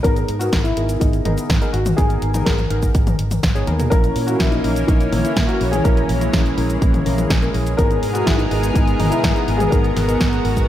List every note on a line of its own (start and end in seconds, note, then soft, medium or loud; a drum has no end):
0.03 0.23 G#1 loud
0.03 0.38 B3 medium
0.03 0.38 D#4 medium
0.03 0.38 G#4 medium
0.03 0.41 A#4 loud
0.03 0.38 A#4 medium
0.03 kick loud
0.03 closed hi-hat medium
0.03 cabasa soft
0.16 closed hi-hat soft
0.16 cabasa soft
0.29 0.48 G#2 medium
0.29 closed hi-hat medium
0.39 0.63 B3 medium
0.39 0.63 D#4 medium
0.39 0.45 F#4 medium
0.39 0.63 G#4 medium
0.39 0.63 A#4 medium
0.39 closed hi-hat medium
0.39 cabasa medium
0.53 0.72 G#1 medium
0.53 kick loud
0.53 snare loud
0.53 closed hi-hat medium
0.53 cabasa soft
0.63 1.02 E4 loud
0.63 closed hi-hat soft
0.63 cabasa soft
0.77 0.96 G#1 medium
0.77 1.23 B3 medium
0.77 1.23 D#4 medium
0.77 1.23 G#4 medium
0.77 1.23 A#4 medium
0.77 closed hi-hat medium
0.89 closed hi-hat medium
0.89 cabasa medium
1.00 1.20 G#1 medium
1.00 1.75 D#4 medium
1.00 kick loud
1.00 closed hi-hat medium
1.00 cabasa soft
1.13 closed hi-hat soft
1.13 cabasa soft
1.25 1.35 G#1 medium
1.25 1.47 B3 medium
1.25 1.47 D#4 medium
1.25 1.47 G#4 medium
1.25 1.47 A#4 medium
1.25 closed hi-hat medium
1.25 high tom medium
1.38 closed hi-hat medium
1.38 cabasa medium
1.50 1.59 G#2 loud
1.50 kick loud
1.50 snare loud
1.50 closed hi-hat medium
1.50 cabasa medium
1.62 1.75 B3 medium
1.62 1.75 D#4 medium
1.62 1.75 G#4 medium
1.62 1.75 A#4 medium
1.62 closed hi-hat soft
1.62 cabasa soft
1.73 1.93 G#1 medium
1.73 1.96 F#4 medium
1.73 closed hi-hat medium
1.86 closed hi-hat medium
1.86 high tom medium
1.86 cabasa medium
1.97 2.17 G#1 medium
1.97 2.31 B3 medium
1.97 2.31 D#4 medium
1.97 2.47 G#4 loud
1.97 2.31 G#4 medium
1.97 2.31 A#4 medium
1.97 kick loud
1.97 closed hi-hat medium
1.97 cabasa soft
2.10 closed hi-hat soft
2.10 cabasa soft
2.22 2.41 G#1 medium
2.22 closed hi-hat medium
2.34 2.56 B3 medium
2.34 2.56 D#4 medium
2.34 2.56 G#4 medium
2.34 2.56 A#4 medium
2.34 closed hi-hat medium
2.34 high tom medium
2.34 cabasa medium
2.45 2.65 G#1 medium
2.45 3.39 A#4 medium
2.45 kick loud
2.45 snare loud
2.45 closed hi-hat medium
2.45 cabasa soft
2.58 closed hi-hat soft
2.58 high tom medium
2.58 cabasa soft
2.70 2.89 G#1 loud
2.70 3.16 B3 medium
2.70 3.16 D#4 medium
2.70 3.16 G#4 medium
2.70 3.16 A#4 medium
2.70 closed hi-hat medium
2.83 kick medium
2.83 closed hi-hat medium
2.83 cabasa medium
2.95 3.14 G#1 medium
2.95 kick loud
2.95 closed hi-hat medium
2.95 cabasa soft
3.07 closed hi-hat soft
3.07 high tom medium
3.07 cabasa soft
3.19 3.38 G#1 medium
3.19 closed hi-hat medium
3.31 closed hi-hat medium
3.31 high tom medium
3.31 cabasa medium
3.43 3.62 G#1 medium
3.43 kick loud
3.43 snare loud
3.43 closed hi-hat medium
3.43 cabasa soft
3.55 3.66 B3 medium
3.55 3.66 D#4 medium
3.55 3.66 G#4 medium
3.55 3.66 C#5 loud
3.55 closed hi-hat soft
3.55 cabasa soft
3.67 3.86 D#2 loud
3.67 3.89 B3 medium
3.67 3.89 D#4 medium
3.67 3.89 G#4 medium
3.67 3.89 A#4 medium
3.67 closed hi-hat medium
3.67 high tom medium
3.80 closed hi-hat medium
3.80 mid tom medium
3.80 cabasa medium
3.90 4.10 A#1 loud
3.90 7.75 E3 medium
3.90 5.83 A#3 medium
3.90 4.25 A#3 medium
3.90 7.75 C#4 medium
3.90 4.25 C#4 medium
3.90 4.25 E4 medium
3.90 4.28 A#4 loud
3.90 4.25 A#4 medium
3.90 kick loud
3.90 closed hi-hat medium
3.90 cabasa soft
4.04 closed hi-hat soft
4.04 cabasa soft
4.16 4.35 A#2 medium
4.16 open hi-hat loud
4.27 4.50 A#3 medium
4.27 4.50 C#4 medium
4.27 4.50 E4 medium
4.27 4.38 F#4 medium
4.27 4.50 A#4 loud
4.27 closed hi-hat medium
4.27 cabasa medium
4.39 4.59 A#1 medium
4.39 4.52 E4 medium
4.39 kick loud
4.39 snare loud
4.39 closed hi-hat medium
4.39 cabasa soft
4.51 4.85 D#4 medium
4.51 closed hi-hat soft
4.51 cabasa soft
4.64 4.83 A#1 medium
4.64 5.10 A#3 medium
4.64 5.10 C#4 medium
4.64 5.10 E4 medium
4.64 5.10 A#4 medium
4.64 open hi-hat medium
4.76 closed hi-hat medium
4.76 cabasa medium
4.87 5.07 A#1 medium
4.87 5.25 D#4 medium
4.87 kick loud
4.87 closed hi-hat medium
4.87 cabasa soft
5.01 closed hi-hat soft
5.01 cabasa soft
5.12 5.22 A#1 medium
5.12 5.34 A#3 medium
5.12 5.34 C#4 medium
5.12 5.34 E4 medium
5.12 5.34 A#4 medium
5.12 open hi-hat loud
5.12 high tom medium
5.23 5.46 E4 medium
5.23 closed hi-hat medium
5.23 cabasa medium
5.37 5.46 A#2 loud
5.37 kick loud
5.37 snare loud
5.37 closed hi-hat medium
5.37 cabasa soft
5.47 5.62 A#3 medium
5.47 5.62 C#4 medium
5.47 5.62 E4 medium
5.47 5.73 F#4 medium
5.47 5.62 A#4 medium
5.47 closed hi-hat soft
5.47 cabasa soft
5.61 5.80 A#1 medium
5.61 open hi-hat medium
5.72 5.84 G#4 medium
5.72 closed hi-hat medium
5.72 high tom medium
5.72 cabasa medium
5.84 6.04 A#1 medium
5.84 10.68 G#3 medium
5.84 6.18 A#3 medium
5.84 6.18 C#4 medium
5.84 6.18 E4 medium
5.84 7.26 A#4 loud
5.84 6.19 A#4 medium
5.84 kick loud
5.84 closed hi-hat medium
5.84 cabasa soft
5.97 closed hi-hat soft
5.97 cabasa soft
6.09 6.28 A#1 medium
6.09 open hi-hat loud
6.21 6.43 A#3 medium
6.21 6.43 C#4 medium
6.21 6.43 E4 medium
6.21 6.43 A#4 medium
6.21 closed hi-hat medium
6.21 cabasa medium
6.33 6.52 A#1 medium
6.33 kick loud
6.33 snare loud
6.33 closed hi-hat medium
6.33 cabasa soft
6.46 closed hi-hat soft
6.46 cabasa soft
6.57 6.77 A#1 loud
6.57 7.03 A#3 medium
6.57 7.03 C#4 medium
6.57 7.03 E4 medium
6.57 7.03 A#4 medium
6.57 open hi-hat medium
6.70 closed hi-hat medium
6.70 cabasa medium
6.82 7.01 A#1 medium
6.82 kick loud
6.82 closed hi-hat medium
6.82 cabasa soft
6.94 closed hi-hat soft
6.94 high tom medium
6.94 cabasa soft
7.06 7.25 A#1 medium
7.06 7.28 A#3 medium
7.06 7.28 C#4 medium
7.06 7.28 E4 medium
7.06 7.28 A#4 medium
7.06 open hi-hat loud
7.18 closed hi-hat medium
7.18 high tom medium
7.18 cabasa medium
7.30 7.49 A#1 medium
7.30 kick loud
7.30 snare loud
7.30 closed hi-hat medium
7.30 cabasa soft
7.42 7.56 A#3 medium
7.42 7.56 C#4 medium
7.42 7.56 E4 medium
7.42 7.56 A#4 medium
7.42 closed hi-hat soft
7.42 cabasa soft
7.54 7.73 A#1 medium
7.54 open hi-hat medium
7.67 closed hi-hat medium
7.67 cabasa medium
7.77 7.98 G#1 loud
7.77 10.68 B2 medium
7.77 8.12 B3 medium
7.77 10.68 B3 medium
7.77 8.12 D#4 medium
7.77 8.12 G#4 medium
7.77 9.70 G#4 medium
7.77 8.15 A#4 loud
7.77 8.12 A#4 medium
7.77 10.68 A#4 medium
7.77 kick loud
7.77 closed hi-hat medium
7.77 cabasa soft
7.91 closed hi-hat soft
7.91 cabasa soft
8.03 8.22 G#2 medium
8.03 open hi-hat loud
8.13 8.37 B3 medium
8.13 8.37 D#4 medium
8.13 8.26 F#4 medium
8.13 8.37 G#4 medium
8.13 8.37 A#4 medium
8.13 closed hi-hat medium
8.13 cabasa medium
8.25 8.46 G#1 loud
8.25 8.30 E4 loud
8.25 kick loud
8.25 snare loud
8.25 closed hi-hat medium
8.25 cabasa soft
8.37 8.72 D#4 loud
8.37 closed hi-hat soft
8.37 cabasa soft
8.51 8.70 G#1 medium
8.51 8.97 B3 medium
8.51 8.97 D#4 medium
8.51 8.97 G#4 medium
8.51 8.97 A#4 medium
8.51 open hi-hat medium
8.63 closed hi-hat medium
8.63 cabasa medium
8.73 8.94 G#1 medium
8.73 9.12 D#4 medium
8.73 kick loud
8.73 closed hi-hat medium
8.73 cabasa soft
8.88 closed hi-hat soft
8.88 cabasa soft
8.99 9.09 G#1 loud
8.99 9.21 B3 medium
8.99 9.21 D#4 medium
8.99 9.21 G#4 medium
8.99 9.21 A#4 loud
8.99 open hi-hat loud
8.99 high tom medium
9.10 9.61 E4 loud
9.10 closed hi-hat medium
9.10 cabasa medium
9.24 9.33 G#2 loud
9.24 kick loud
9.24 snare loud
9.24 closed hi-hat medium
9.24 cabasa soft
9.36 9.49 B3 medium
9.36 9.49 D#4 medium
9.36 9.49 G#4 medium
9.36 9.49 A#4 medium
9.36 closed hi-hat soft
9.36 cabasa soft
9.48 9.67 G#1 medium
9.48 open hi-hat medium
9.58 9.72 G#4 medium
9.58 closed hi-hat medium
9.58 high tom medium
9.58 cabasa medium
9.70 9.91 G#1 medium
9.70 10.06 B3 medium
9.70 10.06 D#4 medium
9.70 10.68 F#4 medium
9.70 10.06 G#4 medium
9.70 10.68 A#4 loud
9.70 10.06 A#4 medium
9.70 kick loud
9.70 closed hi-hat medium
9.70 cabasa soft
9.84 closed hi-hat soft
9.84 cabasa soft
9.96 10.15 G#1 medium
9.96 snare medium
9.96 open hi-hat loud
10.08 10.30 B3 medium
10.08 10.30 D#4 medium
10.08 10.30 G#4 medium
10.08 10.30 A#4 medium
10.08 closed hi-hat soft
10.08 cabasa medium
10.21 10.39 G#1 medium
10.21 kick loud
10.21 snare loud
10.21 closed hi-hat medium
10.21 cabasa soft
10.33 closed hi-hat soft
10.33 cabasa soft
10.45 10.64 G#1 loud
10.45 10.68 B3 medium
10.45 10.68 D#4 medium
10.45 10.68 G#4 medium
10.45 10.68 A#4 medium
10.45 open hi-hat medium
10.57 kick medium
10.57 closed hi-hat soft
10.57 cabasa medium